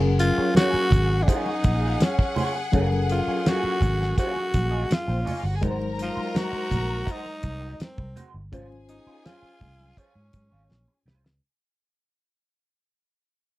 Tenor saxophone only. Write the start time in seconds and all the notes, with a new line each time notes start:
0.20 F4
0.56 F#4
1.23 D4
1.30 D#4
2.04 C#4
3.12 F4
3.49 F#4
4.19 F#4
4.94 F4
6.02 F4
6.38 F#4
7.11 D#4
7.83 C4
8.89 D#4
9.25 F4
9.98 C#4